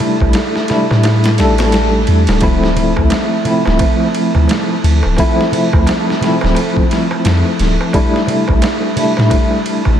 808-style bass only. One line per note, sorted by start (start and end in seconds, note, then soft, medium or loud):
0.21 0.33 A1 medium
0.91 1.40 A2 medium
1.39 2.05 A1 loud
2.08 2.26 E2 medium
2.28 2.93 D1 medium
2.97 3.09 D2 medium
3.67 3.79 D1 medium
4.35 4.47 D2 medium
4.84 5.02 D2 medium
5.05 5.17 D1 medium
5.74 5.86 D2 loud
6.43 6.55 D1 medium
7.25 7.43 F2 medium
7.60 7.78 D1 medium
8.49 8.61 A1 medium
9.18 9.30 A2 medium
9.87 9.99 A1 medium